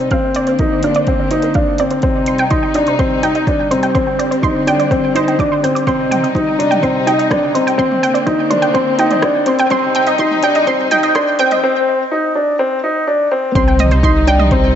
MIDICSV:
0, 0, Header, 1, 6, 480
1, 0, Start_track
1, 0, Key_signature, -3, "minor"
1, 0, Tempo, 480000
1, 115, Time_signature, 4, 2, 24, 8
1, 14752, End_track
2, 0, Start_track
2, 0, Title_t, "Synth arpeggio sound"
2, 0, Program_c, 0, 84
2, 114, Note_on_c, 0, 77, 100
2, 194, Note_off_c, 0, 77, 0
2, 360, Note_on_c, 0, 74, 98
2, 472, Note_off_c, 0, 74, 0
2, 472, Note_on_c, 0, 72, 70
2, 553, Note_off_c, 0, 72, 0
2, 598, Note_on_c, 0, 70, 79
2, 644, Note_off_c, 0, 70, 0
2, 840, Note_on_c, 0, 77, 73
2, 917, Note_off_c, 0, 77, 0
2, 958, Note_on_c, 0, 74, 101
2, 1036, Note_off_c, 0, 74, 0
2, 1082, Note_on_c, 0, 77, 69
2, 1192, Note_off_c, 0, 77, 0
2, 1194, Note_on_c, 0, 74, 69
2, 1242, Note_off_c, 0, 74, 0
2, 1311, Note_on_c, 0, 72, 77
2, 1392, Note_off_c, 0, 72, 0
2, 1434, Note_on_c, 0, 70, 72
2, 1482, Note_off_c, 0, 70, 0
2, 1551, Note_on_c, 0, 77, 91
2, 1632, Note_off_c, 0, 77, 0
2, 1797, Note_on_c, 0, 74, 94
2, 1910, Note_off_c, 0, 74, 0
2, 1911, Note_on_c, 0, 72, 72
2, 1992, Note_off_c, 0, 72, 0
2, 2031, Note_on_c, 0, 72, 81
2, 2081, Note_off_c, 0, 72, 0
2, 2276, Note_on_c, 0, 84, 77
2, 2355, Note_off_c, 0, 84, 0
2, 2392, Note_on_c, 0, 79, 96
2, 2473, Note_off_c, 0, 79, 0
2, 2508, Note_on_c, 0, 84, 77
2, 2626, Note_off_c, 0, 84, 0
2, 2629, Note_on_c, 0, 79, 77
2, 2679, Note_off_c, 0, 79, 0
2, 2752, Note_on_c, 0, 75, 69
2, 2833, Note_off_c, 0, 75, 0
2, 2877, Note_on_c, 0, 72, 73
2, 2924, Note_off_c, 0, 72, 0
2, 2993, Note_on_c, 0, 84, 89
2, 3073, Note_off_c, 0, 84, 0
2, 3233, Note_on_c, 0, 79, 100
2, 3348, Note_off_c, 0, 79, 0
2, 3354, Note_on_c, 0, 75, 73
2, 3434, Note_off_c, 0, 75, 0
2, 3473, Note_on_c, 0, 72, 80
2, 3522, Note_off_c, 0, 72, 0
2, 3709, Note_on_c, 0, 84, 71
2, 3791, Note_off_c, 0, 84, 0
2, 3830, Note_on_c, 0, 79, 90
2, 3912, Note_off_c, 0, 79, 0
2, 3947, Note_on_c, 0, 84, 85
2, 4065, Note_off_c, 0, 84, 0
2, 4069, Note_on_c, 0, 79, 73
2, 4120, Note_off_c, 0, 79, 0
2, 4191, Note_on_c, 0, 74, 79
2, 4272, Note_off_c, 0, 74, 0
2, 4312, Note_on_c, 0, 72, 74
2, 4361, Note_off_c, 0, 72, 0
2, 4433, Note_on_c, 0, 84, 94
2, 4513, Note_off_c, 0, 84, 0
2, 4677, Note_on_c, 0, 79, 98
2, 4790, Note_off_c, 0, 79, 0
2, 4795, Note_on_c, 0, 74, 74
2, 4874, Note_off_c, 0, 74, 0
2, 4914, Note_on_c, 0, 72, 77
2, 4962, Note_off_c, 0, 72, 0
2, 5158, Note_on_c, 0, 72, 99
2, 5236, Note_off_c, 0, 72, 0
2, 5280, Note_on_c, 0, 79, 72
2, 5357, Note_off_c, 0, 79, 0
2, 5398, Note_on_c, 0, 86, 80
2, 5511, Note_off_c, 0, 86, 0
2, 5518, Note_on_c, 0, 84, 73
2, 5596, Note_off_c, 0, 84, 0
2, 5638, Note_on_c, 0, 91, 75
2, 5716, Note_off_c, 0, 91, 0
2, 5752, Note_on_c, 0, 86, 69
2, 5868, Note_off_c, 0, 86, 0
2, 5872, Note_on_c, 0, 84, 97
2, 5953, Note_off_c, 0, 84, 0
2, 6114, Note_on_c, 0, 79, 99
2, 6228, Note_off_c, 0, 79, 0
2, 6236, Note_on_c, 0, 75, 69
2, 6314, Note_off_c, 0, 75, 0
2, 6356, Note_on_c, 0, 72, 74
2, 6403, Note_off_c, 0, 72, 0
2, 6592, Note_on_c, 0, 84, 69
2, 6673, Note_off_c, 0, 84, 0
2, 6708, Note_on_c, 0, 79, 94
2, 6791, Note_off_c, 0, 79, 0
2, 6832, Note_on_c, 0, 84, 88
2, 6913, Note_off_c, 0, 84, 0
2, 7072, Note_on_c, 0, 79, 94
2, 7188, Note_off_c, 0, 79, 0
2, 7190, Note_on_c, 0, 75, 66
2, 7272, Note_off_c, 0, 75, 0
2, 7305, Note_on_c, 0, 72, 76
2, 7358, Note_off_c, 0, 72, 0
2, 7546, Note_on_c, 0, 84, 73
2, 7630, Note_off_c, 0, 84, 0
2, 7670, Note_on_c, 0, 79, 87
2, 7752, Note_off_c, 0, 79, 0
2, 7788, Note_on_c, 0, 84, 97
2, 7871, Note_off_c, 0, 84, 0
2, 8031, Note_on_c, 0, 79, 100
2, 8142, Note_on_c, 0, 74, 72
2, 8147, Note_off_c, 0, 79, 0
2, 8228, Note_off_c, 0, 74, 0
2, 8265, Note_on_c, 0, 72, 79
2, 8318, Note_off_c, 0, 72, 0
2, 8504, Note_on_c, 0, 84, 71
2, 8588, Note_off_c, 0, 84, 0
2, 8621, Note_on_c, 0, 79, 97
2, 8707, Note_off_c, 0, 79, 0
2, 8747, Note_on_c, 0, 84, 91
2, 8830, Note_off_c, 0, 84, 0
2, 8993, Note_on_c, 0, 79, 94
2, 9108, Note_off_c, 0, 79, 0
2, 9114, Note_on_c, 0, 74, 66
2, 9193, Note_off_c, 0, 74, 0
2, 9229, Note_on_c, 0, 72, 79
2, 9280, Note_off_c, 0, 72, 0
2, 9475, Note_on_c, 0, 84, 74
2, 9554, Note_off_c, 0, 84, 0
2, 9595, Note_on_c, 0, 79, 95
2, 9674, Note_off_c, 0, 79, 0
2, 9713, Note_on_c, 0, 84, 105
2, 9793, Note_off_c, 0, 84, 0
2, 9955, Note_on_c, 0, 79, 105
2, 10069, Note_off_c, 0, 79, 0
2, 10072, Note_on_c, 0, 75, 74
2, 10153, Note_off_c, 0, 75, 0
2, 10194, Note_on_c, 0, 84, 101
2, 10274, Note_off_c, 0, 84, 0
2, 10434, Note_on_c, 0, 79, 106
2, 10549, Note_off_c, 0, 79, 0
2, 10555, Note_on_c, 0, 75, 80
2, 10634, Note_off_c, 0, 75, 0
2, 10673, Note_on_c, 0, 84, 94
2, 10753, Note_off_c, 0, 84, 0
2, 10913, Note_on_c, 0, 79, 108
2, 11028, Note_off_c, 0, 79, 0
2, 11033, Note_on_c, 0, 75, 75
2, 11113, Note_off_c, 0, 75, 0
2, 11150, Note_on_c, 0, 84, 99
2, 11232, Note_off_c, 0, 84, 0
2, 11393, Note_on_c, 0, 79, 103
2, 11508, Note_off_c, 0, 79, 0
2, 11519, Note_on_c, 0, 75, 73
2, 11596, Note_off_c, 0, 75, 0
2, 13554, Note_on_c, 0, 84, 82
2, 13669, Note_off_c, 0, 84, 0
2, 13678, Note_on_c, 0, 79, 78
2, 13724, Note_off_c, 0, 79, 0
2, 13799, Note_on_c, 0, 75, 82
2, 13876, Note_off_c, 0, 75, 0
2, 13916, Note_on_c, 0, 72, 76
2, 13963, Note_off_c, 0, 72, 0
2, 14039, Note_on_c, 0, 84, 93
2, 14116, Note_off_c, 0, 84, 0
2, 14277, Note_on_c, 0, 79, 105
2, 14390, Note_off_c, 0, 79, 0
2, 14394, Note_on_c, 0, 75, 80
2, 14474, Note_off_c, 0, 75, 0
2, 14518, Note_on_c, 0, 72, 78
2, 14564, Note_off_c, 0, 72, 0
2, 14752, End_track
3, 0, Start_track
3, 0, Title_t, "Upright piano"
3, 0, Program_c, 1, 0
3, 115, Note_on_c, 1, 60, 88
3, 499, Note_off_c, 1, 60, 0
3, 599, Note_on_c, 1, 63, 75
3, 789, Note_off_c, 1, 63, 0
3, 839, Note_on_c, 1, 62, 70
3, 1029, Note_off_c, 1, 62, 0
3, 1078, Note_on_c, 1, 60, 85
3, 1269, Note_off_c, 1, 60, 0
3, 1311, Note_on_c, 1, 63, 74
3, 1504, Note_off_c, 1, 63, 0
3, 1550, Note_on_c, 1, 62, 74
3, 1744, Note_off_c, 1, 62, 0
3, 1791, Note_on_c, 1, 60, 72
3, 1984, Note_off_c, 1, 60, 0
3, 2028, Note_on_c, 1, 60, 83
3, 2414, Note_off_c, 1, 60, 0
3, 2506, Note_on_c, 1, 63, 75
3, 2701, Note_off_c, 1, 63, 0
3, 2745, Note_on_c, 1, 62, 69
3, 2941, Note_off_c, 1, 62, 0
3, 2989, Note_on_c, 1, 60, 94
3, 3183, Note_off_c, 1, 60, 0
3, 3227, Note_on_c, 1, 63, 76
3, 3422, Note_off_c, 1, 63, 0
3, 3472, Note_on_c, 1, 62, 80
3, 3665, Note_off_c, 1, 62, 0
3, 3708, Note_on_c, 1, 60, 77
3, 3903, Note_off_c, 1, 60, 0
3, 3951, Note_on_c, 1, 60, 91
3, 4336, Note_off_c, 1, 60, 0
3, 4424, Note_on_c, 1, 63, 70
3, 4620, Note_off_c, 1, 63, 0
3, 4670, Note_on_c, 1, 62, 75
3, 4864, Note_off_c, 1, 62, 0
3, 4908, Note_on_c, 1, 60, 87
3, 5102, Note_off_c, 1, 60, 0
3, 5149, Note_on_c, 1, 63, 77
3, 5343, Note_off_c, 1, 63, 0
3, 5394, Note_on_c, 1, 62, 74
3, 5586, Note_off_c, 1, 62, 0
3, 5634, Note_on_c, 1, 60, 72
3, 5826, Note_off_c, 1, 60, 0
3, 5874, Note_on_c, 1, 60, 94
3, 6258, Note_off_c, 1, 60, 0
3, 6350, Note_on_c, 1, 63, 77
3, 6544, Note_off_c, 1, 63, 0
3, 6588, Note_on_c, 1, 62, 76
3, 6782, Note_off_c, 1, 62, 0
3, 6826, Note_on_c, 1, 60, 87
3, 7022, Note_off_c, 1, 60, 0
3, 7065, Note_on_c, 1, 63, 81
3, 7261, Note_off_c, 1, 63, 0
3, 7306, Note_on_c, 1, 62, 83
3, 7501, Note_off_c, 1, 62, 0
3, 7547, Note_on_c, 1, 60, 76
3, 7742, Note_off_c, 1, 60, 0
3, 7779, Note_on_c, 1, 60, 94
3, 8169, Note_off_c, 1, 60, 0
3, 8263, Note_on_c, 1, 63, 74
3, 8460, Note_off_c, 1, 63, 0
3, 8503, Note_on_c, 1, 62, 80
3, 8700, Note_off_c, 1, 62, 0
3, 8741, Note_on_c, 1, 60, 92
3, 8938, Note_off_c, 1, 60, 0
3, 8988, Note_on_c, 1, 63, 82
3, 9182, Note_off_c, 1, 63, 0
3, 9224, Note_on_c, 1, 62, 86
3, 9420, Note_off_c, 1, 62, 0
3, 9463, Note_on_c, 1, 60, 80
3, 9660, Note_off_c, 1, 60, 0
3, 9706, Note_on_c, 1, 60, 96
3, 10093, Note_off_c, 1, 60, 0
3, 10188, Note_on_c, 1, 63, 84
3, 10382, Note_off_c, 1, 63, 0
3, 10428, Note_on_c, 1, 62, 76
3, 10623, Note_off_c, 1, 62, 0
3, 10670, Note_on_c, 1, 60, 93
3, 10864, Note_off_c, 1, 60, 0
3, 10914, Note_on_c, 1, 63, 84
3, 11106, Note_off_c, 1, 63, 0
3, 11154, Note_on_c, 1, 62, 89
3, 11346, Note_off_c, 1, 62, 0
3, 11392, Note_on_c, 1, 60, 82
3, 11585, Note_off_c, 1, 60, 0
3, 11636, Note_on_c, 1, 60, 97
3, 12019, Note_off_c, 1, 60, 0
3, 12115, Note_on_c, 1, 63, 83
3, 12307, Note_off_c, 1, 63, 0
3, 12354, Note_on_c, 1, 62, 80
3, 12546, Note_off_c, 1, 62, 0
3, 12592, Note_on_c, 1, 60, 92
3, 12785, Note_off_c, 1, 60, 0
3, 12836, Note_on_c, 1, 63, 85
3, 13028, Note_off_c, 1, 63, 0
3, 13074, Note_on_c, 1, 62, 86
3, 13266, Note_off_c, 1, 62, 0
3, 13315, Note_on_c, 1, 60, 84
3, 13507, Note_off_c, 1, 60, 0
3, 13553, Note_on_c, 1, 60, 93
3, 13937, Note_off_c, 1, 60, 0
3, 14031, Note_on_c, 1, 63, 81
3, 14224, Note_off_c, 1, 63, 0
3, 14271, Note_on_c, 1, 62, 80
3, 14464, Note_off_c, 1, 62, 0
3, 14514, Note_on_c, 1, 60, 89
3, 14706, Note_off_c, 1, 60, 0
3, 14752, End_track
4, 0, Start_track
4, 0, Title_t, "String section"
4, 0, Program_c, 2, 48
4, 116, Note_on_c, 2, 60, 82
4, 121, Note_on_c, 2, 50, 71
4, 128, Note_on_c, 2, 58, 62
4, 2016, Note_off_c, 2, 60, 0
4, 2019, Note_off_c, 2, 50, 0
4, 2022, Note_off_c, 2, 58, 0
4, 2024, Note_on_c, 2, 48, 71
4, 2024, Note_on_c, 2, 55, 68
4, 2027, Note_on_c, 2, 63, 80
4, 3930, Note_off_c, 2, 48, 0
4, 3932, Note_off_c, 2, 63, 0
4, 3937, Note_on_c, 2, 60, 82
4, 3942, Note_on_c, 2, 50, 75
4, 5831, Note_off_c, 2, 55, 0
4, 5847, Note_off_c, 2, 60, 0
4, 5850, Note_off_c, 2, 50, 0
4, 5872, Note_on_c, 2, 48, 73
4, 5872, Note_on_c, 2, 63, 79
4, 5877, Note_on_c, 2, 55, 67
4, 7774, Note_off_c, 2, 48, 0
4, 7775, Note_off_c, 2, 63, 0
4, 7777, Note_off_c, 2, 55, 0
4, 7788, Note_on_c, 2, 50, 74
4, 7788, Note_on_c, 2, 58, 70
4, 7789, Note_on_c, 2, 60, 88
4, 9693, Note_off_c, 2, 50, 0
4, 9693, Note_off_c, 2, 58, 0
4, 9693, Note_off_c, 2, 60, 0
4, 9700, Note_on_c, 2, 63, 91
4, 9702, Note_on_c, 2, 55, 72
4, 9706, Note_on_c, 2, 48, 82
4, 11608, Note_off_c, 2, 63, 0
4, 11610, Note_off_c, 2, 55, 0
4, 11611, Note_off_c, 2, 48, 0
4, 13544, Note_on_c, 2, 48, 79
4, 13546, Note_on_c, 2, 63, 86
4, 13549, Note_on_c, 2, 55, 73
4, 14752, Note_off_c, 2, 48, 0
4, 14752, Note_off_c, 2, 55, 0
4, 14752, Note_off_c, 2, 63, 0
4, 14752, End_track
5, 0, Start_track
5, 0, Title_t, "Analog synth bass"
5, 0, Program_c, 3, 38
5, 108, Note_on_c, 3, 34, 85
5, 2008, Note_off_c, 3, 34, 0
5, 2030, Note_on_c, 3, 36, 85
5, 3929, Note_off_c, 3, 36, 0
5, 5866, Note_on_c, 3, 36, 84
5, 7767, Note_off_c, 3, 36, 0
5, 7785, Note_on_c, 3, 34, 87
5, 9686, Note_off_c, 3, 34, 0
5, 9708, Note_on_c, 3, 36, 88
5, 11608, Note_off_c, 3, 36, 0
5, 13552, Note_on_c, 3, 36, 88
5, 14752, Note_off_c, 3, 36, 0
5, 14752, End_track
6, 0, Start_track
6, 0, Title_t, "Drums"
6, 107, Note_on_c, 9, 42, 29
6, 112, Note_on_c, 9, 36, 95
6, 207, Note_off_c, 9, 42, 0
6, 212, Note_off_c, 9, 36, 0
6, 345, Note_on_c, 9, 42, 71
6, 445, Note_off_c, 9, 42, 0
6, 468, Note_on_c, 9, 42, 38
6, 568, Note_off_c, 9, 42, 0
6, 587, Note_on_c, 9, 42, 31
6, 592, Note_on_c, 9, 36, 92
6, 687, Note_off_c, 9, 42, 0
6, 692, Note_off_c, 9, 36, 0
6, 826, Note_on_c, 9, 42, 65
6, 926, Note_off_c, 9, 42, 0
6, 945, Note_on_c, 9, 42, 41
6, 1045, Note_off_c, 9, 42, 0
6, 1067, Note_on_c, 9, 42, 29
6, 1072, Note_on_c, 9, 36, 90
6, 1167, Note_off_c, 9, 42, 0
6, 1172, Note_off_c, 9, 36, 0
6, 1307, Note_on_c, 9, 42, 67
6, 1407, Note_off_c, 9, 42, 0
6, 1423, Note_on_c, 9, 42, 41
6, 1523, Note_off_c, 9, 42, 0
6, 1542, Note_on_c, 9, 42, 31
6, 1552, Note_on_c, 9, 36, 94
6, 1642, Note_off_c, 9, 42, 0
6, 1652, Note_off_c, 9, 36, 0
6, 1783, Note_on_c, 9, 42, 71
6, 1883, Note_off_c, 9, 42, 0
6, 1905, Note_on_c, 9, 42, 40
6, 2005, Note_off_c, 9, 42, 0
6, 2020, Note_on_c, 9, 42, 30
6, 2031, Note_on_c, 9, 36, 101
6, 2120, Note_off_c, 9, 42, 0
6, 2131, Note_off_c, 9, 36, 0
6, 2263, Note_on_c, 9, 42, 75
6, 2363, Note_off_c, 9, 42, 0
6, 2384, Note_on_c, 9, 42, 40
6, 2484, Note_off_c, 9, 42, 0
6, 2505, Note_on_c, 9, 42, 34
6, 2512, Note_on_c, 9, 36, 99
6, 2605, Note_off_c, 9, 42, 0
6, 2613, Note_off_c, 9, 36, 0
6, 2743, Note_on_c, 9, 42, 72
6, 2843, Note_off_c, 9, 42, 0
6, 2867, Note_on_c, 9, 42, 39
6, 2967, Note_off_c, 9, 42, 0
6, 2990, Note_on_c, 9, 42, 31
6, 2991, Note_on_c, 9, 36, 100
6, 3090, Note_off_c, 9, 42, 0
6, 3091, Note_off_c, 9, 36, 0
6, 3231, Note_on_c, 9, 42, 72
6, 3331, Note_off_c, 9, 42, 0
6, 3350, Note_on_c, 9, 42, 40
6, 3450, Note_off_c, 9, 42, 0
6, 3471, Note_on_c, 9, 36, 100
6, 3475, Note_on_c, 9, 42, 32
6, 3571, Note_off_c, 9, 36, 0
6, 3575, Note_off_c, 9, 42, 0
6, 3714, Note_on_c, 9, 42, 73
6, 3814, Note_off_c, 9, 42, 0
6, 3829, Note_on_c, 9, 42, 41
6, 3929, Note_off_c, 9, 42, 0
6, 3951, Note_on_c, 9, 36, 106
6, 3952, Note_on_c, 9, 42, 32
6, 4051, Note_off_c, 9, 36, 0
6, 4052, Note_off_c, 9, 42, 0
6, 4195, Note_on_c, 9, 42, 74
6, 4295, Note_off_c, 9, 42, 0
6, 4320, Note_on_c, 9, 42, 38
6, 4420, Note_off_c, 9, 42, 0
6, 4431, Note_on_c, 9, 36, 100
6, 4441, Note_on_c, 9, 42, 31
6, 4531, Note_off_c, 9, 36, 0
6, 4541, Note_off_c, 9, 42, 0
6, 4674, Note_on_c, 9, 42, 72
6, 4774, Note_off_c, 9, 42, 0
6, 4796, Note_on_c, 9, 42, 43
6, 4896, Note_off_c, 9, 42, 0
6, 4911, Note_on_c, 9, 36, 103
6, 4918, Note_on_c, 9, 42, 32
6, 5011, Note_off_c, 9, 36, 0
6, 5018, Note_off_c, 9, 42, 0
6, 5156, Note_on_c, 9, 42, 70
6, 5256, Note_off_c, 9, 42, 0
6, 5280, Note_on_c, 9, 42, 40
6, 5380, Note_off_c, 9, 42, 0
6, 5391, Note_on_c, 9, 36, 96
6, 5397, Note_on_c, 9, 42, 31
6, 5491, Note_off_c, 9, 36, 0
6, 5497, Note_off_c, 9, 42, 0
6, 5640, Note_on_c, 9, 42, 76
6, 5740, Note_off_c, 9, 42, 0
6, 5764, Note_on_c, 9, 42, 41
6, 5864, Note_off_c, 9, 42, 0
6, 5870, Note_on_c, 9, 36, 102
6, 5885, Note_on_c, 9, 42, 30
6, 5970, Note_off_c, 9, 36, 0
6, 5985, Note_off_c, 9, 42, 0
6, 6118, Note_on_c, 9, 42, 75
6, 6118, Note_on_c, 9, 45, 61
6, 6218, Note_off_c, 9, 42, 0
6, 6218, Note_off_c, 9, 45, 0
6, 6241, Note_on_c, 9, 42, 38
6, 6341, Note_off_c, 9, 42, 0
6, 6350, Note_on_c, 9, 36, 95
6, 6362, Note_on_c, 9, 42, 31
6, 6450, Note_off_c, 9, 36, 0
6, 6462, Note_off_c, 9, 42, 0
6, 6599, Note_on_c, 9, 42, 69
6, 6699, Note_off_c, 9, 42, 0
6, 6718, Note_on_c, 9, 42, 38
6, 6718, Note_on_c, 9, 45, 56
6, 6818, Note_off_c, 9, 42, 0
6, 6818, Note_off_c, 9, 45, 0
6, 6829, Note_on_c, 9, 36, 91
6, 6833, Note_on_c, 9, 42, 31
6, 6929, Note_off_c, 9, 36, 0
6, 6933, Note_off_c, 9, 42, 0
6, 7073, Note_on_c, 9, 42, 72
6, 7173, Note_off_c, 9, 42, 0
6, 7194, Note_on_c, 9, 42, 40
6, 7294, Note_off_c, 9, 42, 0
6, 7309, Note_on_c, 9, 36, 104
6, 7313, Note_on_c, 9, 37, 67
6, 7313, Note_on_c, 9, 42, 31
6, 7313, Note_on_c, 9, 45, 63
6, 7409, Note_off_c, 9, 36, 0
6, 7413, Note_off_c, 9, 37, 0
6, 7413, Note_off_c, 9, 42, 0
6, 7413, Note_off_c, 9, 45, 0
6, 7552, Note_on_c, 9, 42, 72
6, 7652, Note_off_c, 9, 42, 0
6, 7677, Note_on_c, 9, 42, 45
6, 7777, Note_off_c, 9, 42, 0
6, 7787, Note_on_c, 9, 36, 100
6, 7794, Note_on_c, 9, 42, 30
6, 7887, Note_off_c, 9, 36, 0
6, 7893, Note_off_c, 9, 42, 0
6, 7916, Note_on_c, 9, 45, 62
6, 8015, Note_off_c, 9, 45, 0
6, 8034, Note_on_c, 9, 42, 67
6, 8134, Note_off_c, 9, 42, 0
6, 8151, Note_on_c, 9, 42, 39
6, 8251, Note_off_c, 9, 42, 0
6, 8268, Note_on_c, 9, 36, 103
6, 8268, Note_on_c, 9, 42, 33
6, 8368, Note_off_c, 9, 36, 0
6, 8368, Note_off_c, 9, 42, 0
6, 8507, Note_on_c, 9, 42, 65
6, 8507, Note_on_c, 9, 45, 62
6, 8607, Note_off_c, 9, 42, 0
6, 8607, Note_off_c, 9, 45, 0
6, 8624, Note_on_c, 9, 42, 40
6, 8724, Note_off_c, 9, 42, 0
6, 8747, Note_on_c, 9, 42, 30
6, 8749, Note_on_c, 9, 36, 99
6, 8847, Note_off_c, 9, 42, 0
6, 8849, Note_off_c, 9, 36, 0
6, 8987, Note_on_c, 9, 42, 70
6, 9087, Note_off_c, 9, 42, 0
6, 9106, Note_on_c, 9, 42, 39
6, 9106, Note_on_c, 9, 45, 63
6, 9206, Note_off_c, 9, 42, 0
6, 9206, Note_off_c, 9, 45, 0
6, 9224, Note_on_c, 9, 37, 71
6, 9224, Note_on_c, 9, 42, 31
6, 9229, Note_on_c, 9, 36, 94
6, 9324, Note_off_c, 9, 37, 0
6, 9324, Note_off_c, 9, 42, 0
6, 9329, Note_off_c, 9, 36, 0
6, 9460, Note_on_c, 9, 42, 69
6, 9560, Note_off_c, 9, 42, 0
6, 9586, Note_on_c, 9, 42, 41
6, 9686, Note_off_c, 9, 42, 0
6, 9703, Note_on_c, 9, 42, 31
6, 9703, Note_on_c, 9, 45, 67
6, 9710, Note_on_c, 9, 36, 98
6, 9803, Note_off_c, 9, 42, 0
6, 9803, Note_off_c, 9, 45, 0
6, 9810, Note_off_c, 9, 36, 0
6, 9947, Note_on_c, 9, 42, 70
6, 10047, Note_off_c, 9, 42, 0
6, 10066, Note_on_c, 9, 42, 38
6, 10166, Note_off_c, 9, 42, 0
6, 10184, Note_on_c, 9, 42, 33
6, 10191, Note_on_c, 9, 36, 95
6, 10284, Note_off_c, 9, 42, 0
6, 10291, Note_off_c, 9, 36, 0
6, 10308, Note_on_c, 9, 45, 68
6, 10408, Note_off_c, 9, 45, 0
6, 10426, Note_on_c, 9, 42, 66
6, 10526, Note_off_c, 9, 42, 0
6, 10550, Note_on_c, 9, 42, 39
6, 10650, Note_off_c, 9, 42, 0
6, 10671, Note_on_c, 9, 42, 32
6, 10672, Note_on_c, 9, 36, 93
6, 10771, Note_off_c, 9, 42, 0
6, 10772, Note_off_c, 9, 36, 0
6, 10911, Note_on_c, 9, 42, 70
6, 10911, Note_on_c, 9, 45, 71
6, 11011, Note_off_c, 9, 42, 0
6, 11011, Note_off_c, 9, 45, 0
6, 11032, Note_on_c, 9, 42, 40
6, 11132, Note_off_c, 9, 42, 0
6, 11152, Note_on_c, 9, 36, 98
6, 11156, Note_on_c, 9, 37, 74
6, 11156, Note_on_c, 9, 42, 29
6, 11252, Note_off_c, 9, 36, 0
6, 11256, Note_off_c, 9, 37, 0
6, 11256, Note_off_c, 9, 42, 0
6, 11388, Note_on_c, 9, 42, 70
6, 11488, Note_off_c, 9, 42, 0
6, 11512, Note_on_c, 9, 42, 41
6, 11512, Note_on_c, 9, 45, 67
6, 11612, Note_off_c, 9, 42, 0
6, 11612, Note_off_c, 9, 45, 0
6, 13553, Note_on_c, 9, 36, 113
6, 13556, Note_on_c, 9, 42, 42
6, 13653, Note_off_c, 9, 36, 0
6, 13656, Note_off_c, 9, 42, 0
6, 13792, Note_on_c, 9, 42, 64
6, 13792, Note_on_c, 9, 45, 71
6, 13892, Note_off_c, 9, 42, 0
6, 13892, Note_off_c, 9, 45, 0
6, 13912, Note_on_c, 9, 42, 28
6, 14012, Note_off_c, 9, 42, 0
6, 14033, Note_on_c, 9, 36, 101
6, 14036, Note_on_c, 9, 42, 44
6, 14133, Note_off_c, 9, 36, 0
6, 14136, Note_off_c, 9, 42, 0
6, 14274, Note_on_c, 9, 42, 60
6, 14374, Note_off_c, 9, 42, 0
6, 14393, Note_on_c, 9, 45, 67
6, 14493, Note_off_c, 9, 45, 0
6, 14510, Note_on_c, 9, 42, 42
6, 14511, Note_on_c, 9, 36, 99
6, 14610, Note_off_c, 9, 42, 0
6, 14611, Note_off_c, 9, 36, 0
6, 14752, End_track
0, 0, End_of_file